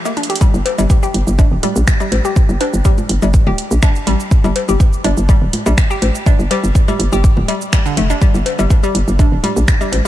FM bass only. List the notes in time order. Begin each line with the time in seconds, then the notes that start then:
0.54 G1
0.78 G1
1.14 G1
1.27 G1
1.52 D1
1.76 A#1
2.12 A1
2.49 G1
2.74 G1
3.10 G1
3.22 G1
3.47 D1
3.71 A#1
4.07 A1
4.44 G1
4.69 G1
5.05 G1
5.17 G1
5.42 D1
5.66 A#1
6.02 A1
6.39 G1
6.64 G1
6.99 G1
7.12 G1
7.37 D1
7.97 F1
8.34 G1
8.59 G1
8.95 G1
9.08 G1
9.32 D1
9.56 A#1
9.92 A1